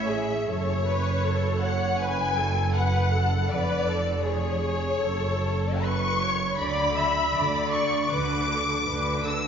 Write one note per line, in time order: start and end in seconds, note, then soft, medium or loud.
0.00 0.49 A1 medium
0.00 0.49 A2 medium
0.00 0.46 E5 medium
0.00 0.48 E5 loud
0.09 0.48 G#4 medium
0.48 3.45 F#1 medium
0.48 3.45 F#2 loud
0.48 0.87 A4 medium
0.48 1.62 C#5 loud
0.48 1.61 C#5 loud
0.87 1.24 B4 medium
1.26 1.63 A4 medium
1.61 2.01 C#5 medium
1.61 1.99 F#5 loud
1.61 2.00 F#5 loud
2.00 2.37 B4 medium
2.00 2.73 G#5 loud
2.00 2.75 G#5 loud
2.38 2.75 A4 medium
2.74 3.13 B4 medium
2.74 3.47 F#5 loud
2.74 3.50 F#5 medium
3.14 3.49 A4 medium
3.50 5.00 F1 medium
3.50 5.00 F2 medium
3.50 3.86 B4 medium
3.50 4.24 D5 loud
3.50 4.23 D5 loud
3.87 4.24 A4 medium
4.24 5.00 G#4 medium
4.24 5.83 C#5 medium
4.24 5.83 C#5 loud
5.00 6.57 F#1 medium
5.00 6.57 F#2 medium
5.00 5.83 A4 medium
5.83 6.22 B4 medium
5.83 6.57 C#6 loud
5.83 6.59 C#6 loud
6.21 6.59 C#5 medium
6.56 7.26 D2 medium
6.56 7.26 D3 medium
6.56 6.96 D5 loud
6.56 7.70 B5 loud
6.96 7.35 E5 medium
7.34 8.03 D2 medium
7.34 8.03 D3 medium
7.34 8.11 D5 medium
7.73 8.11 C#6 loud
7.73 8.12 C#6 medium
8.10 8.79 D2 medium
8.10 8.79 D3 medium
8.10 8.50 B4 medium
8.10 9.25 D6 loud
8.49 8.87 A4 medium
8.88 9.47 D2 medium
8.88 9.47 D3 medium
8.88 9.26 B4 medium
9.24 9.47 A4 medium
9.24 9.47 E6 loud